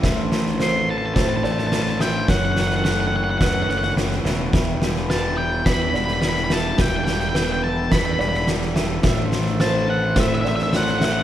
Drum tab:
SD |o-ooo---o-ooooo-|o-ooo---o-ooooo-|o-ooo---o-ooooo-|o-ooo---o-ooooo-|
BD |o-------o-------|o-------o-------|o-------o-------|o-------o-------|

SD |o-ooo---o-ooooo-|
BD |o-------o-------|